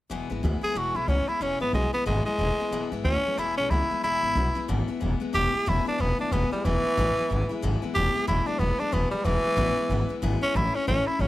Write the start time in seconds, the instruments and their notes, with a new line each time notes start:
0.10 upright bass E1, steel-string acoustic guitar E2 B2 E3 G#3 B3 E4
0.30 upright bass G#1, steel-string acoustic guitar E3 G#3 B3 E4
0.43 upright bass D2, steel-string acoustic guitar E3 G#3 B3 E4
0.61 steel-string acoustic guitar E3 G#3 B3 E4, tenor saxophone G#4, muted upright bass stroke
0.75 upright bass E1, steel-string acoustic guitar E2 B2 E3 G#3 B3 E4, tenor saxophone F#4
0.95 upright bass B1, steel-string acoustic guitar E3 G#3 B3 E4, tenor saxophone E4
1.08 upright bass C#2, steel-string acoustic guitar E3 G#3 B3 E4, tenor saxophone C#4
1.27 steel-string acoustic guitar E3 G#3 B3 E4, tenor saxophone E4, muted upright bass stroke
1.41 upright bass E1, steel-string acoustic guitar E2 B2 E3 G#3 B3 E4, tenor saxophone C#4
1.60 upright bass G#1, steel-string acoustic guitar E3 G#3 B3 E4, tenor saxophone B3
1.73 upright bass B1, steel-string acoustic guitar E3 G#3 B3 E4, tenor saxophone G#3
1.93 steel-string acoustic guitar E3 G#3 B3 E4, tenor saxophone B3, muted upright bass stroke
2.06 upright bass G#1, steel-string acoustic guitar E2 B2 E3 G#3 B3 E4, tenor saxophone G#3
2.25 steel-string acoustic guitar E3 G#3 B3 E4, tenor saxophone G#3, muted upright bass stroke
2.38 upright bass E1, steel-string acoustic guitar E3 G#3 B3 E4
2.58 steel-string acoustic guitar E3 G#3 B3 E4, muted upright bass stroke
2.71 upright bass E1, steel-string acoustic guitar E2 B2 E3 G#3 B3 E4
2.92 upright bass G#1, steel-string acoustic guitar E3 G#3 B3 E4
3.04 upright bass D2, steel-string acoustic guitar E3 G#3 B3 E4, tenor saxophone C#4
3.25 steel-string acoustic guitar E3 G#3 B3 E4
3.38 upright bass E1, steel-string acoustic guitar E2 B2 E3 G#3 B3 E4, tenor saxophone E4
3.57 upright bass B1, steel-string acoustic guitar E3 G#3 B3 E4, tenor saxophone C#4
3.70 upright bass C#2, steel-string acoustic guitar E3 G#3 B3 E4, tenor saxophone E4
3.90 steel-string acoustic guitar E3 G#3 B3 E4, muted upright bass stroke
4.03 upright bass E1, steel-string acoustic guitar E2 B2 E3 G#3 B3 E4, tenor saxophone E4
4.23 upright bass G#1, steel-string acoustic guitar E3 G#3 B3 E4
4.35 upright bass B1, steel-string acoustic guitar E3 G#3 B3 E4
4.55 steel-string acoustic guitar E3 G#3 B3 E4, muted upright bass stroke
4.68 upright bass G#1, steel-string acoustic guitar E2 B2 E3 G#3 B3 E4
4.88 steel-string acoustic guitar E3 G#3 B3 E4, muted upright bass stroke
5.00 upright bass E1, steel-string acoustic guitar E3 G#3 B3 E4
5.20 steel-string acoustic guitar E3 G#3 B3 E4, muted upright bass stroke
5.33 upright bass E1, steel-string acoustic guitar E2 B2 E3 G#3 B3 E4, tenor saxophone G4
5.53 steel-string acoustic guitar E3 G#3 B3 E4, muted upright bass stroke
5.66 upright bass E1, steel-string acoustic guitar E2 B2 E3 G#3 B3 E4, tenor saxophone E4
5.85 steel-string acoustic guitar E3 G#3 B3 E4, tenor saxophone D4, muted upright bass stroke
5.98 upright bass E1, steel-string acoustic guitar E3 G#3 B3 E4, tenor saxophone B3
6.19 steel-string acoustic guitar E3 G#3 B3 E4, tenor saxophone D4, muted upright bass stroke
6.31 upright bass E1, steel-string acoustic guitar E2 B2 E3 G#3 B3 E4, tenor saxophone B3
6.51 steel-string acoustic guitar E3 G#3 B3 E4, tenor saxophone G3, muted upright bass stroke
6.65 upright bass E1, steel-string acoustic guitar E2 B2 E3 G#3 B3 E4, tenor saxophone E3
6.84 steel-string acoustic guitar E3 G#3 B3 E4, muted upright bass stroke
6.97 upright bass A1, steel-string acoustic guitar E2 B2 E3 G#3 B3 E4
7.17 steel-string acoustic guitar E3 G#3 B3 E4, muted upright bass stroke
7.30 upright bass G#1, steel-string acoustic guitar E3 G#3 B3 E4
7.49 steel-string acoustic guitar E3 G#3 B3 E4, muted upright bass stroke
7.62 upright bass G#1, steel-string acoustic guitar E2 B2 E3 G#3 B3 E4
7.82 steel-string acoustic guitar E3 G#3 B3 E4, muted upright bass stroke
7.95 upright bass E1, steel-string acoustic guitar E2 B2 E3 G#3 B3 E4, tenor saxophone G4
8.15 steel-string acoustic guitar E3 G#3 B3 E4, muted upright bass stroke
8.27 upright bass E1, steel-string acoustic guitar E2 B2 E3 G#3 B3 E4, tenor saxophone E4
8.46 steel-string acoustic guitar E3 G#3 B3 E4, tenor saxophone D4, muted upright bass stroke
8.59 upright bass E1, steel-string acoustic guitar E3 G#3 B3 E4, tenor saxophone B3
8.79 steel-string acoustic guitar E3 G#3 B3 E4, tenor saxophone D4
8.92 upright bass E1, steel-string acoustic guitar E2 B2 E3 G#3 B3 E4, tenor saxophone B3
9.11 steel-string acoustic guitar E3 G#3 B3 E4, tenor saxophone G3, muted upright bass stroke
9.24 upright bass E1, steel-string acoustic guitar E2 B2 E3 G#3 B3 E4, tenor saxophone E3
9.44 steel-string acoustic guitar E3 G#3 B3 E4, muted upright bass stroke
9.57 upright bass A1, steel-string acoustic guitar E2 B2 E3 G#3 B3 E4
9.76 steel-string acoustic guitar E3 G#3 B3 E4, muted upright bass stroke
9.89 upright bass G#1, steel-string acoustic guitar E3 G#3 B3 E4
10.09 steel-string acoustic guitar E3 G#3 B3 E4, muted upright bass stroke
10.22 upright bass G#1, steel-string acoustic guitar E2 B2 E3 G#3 B3 E4
10.41 steel-string acoustic guitar E3 G#3 B3 E4, tenor saxophone C#4
10.55 upright bass A1, steel-string acoustic guitar A2 E3 A3 C#4 E4, tenor saxophone E4
10.74 steel-string acoustic guitar A3 C#4 E4, tenor saxophone C#4
10.87 upright bass A1, steel-string acoustic guitar A2 E3 A3 C#4 E4, tenor saxophone C#4
11.06 steel-string acoustic guitar A3 C#4, tenor saxophone E4, muted upright bass stroke
11.19 upright bass A1, steel-string acoustic guitar E3 A3 C#4 E4, tenor saxophone C#4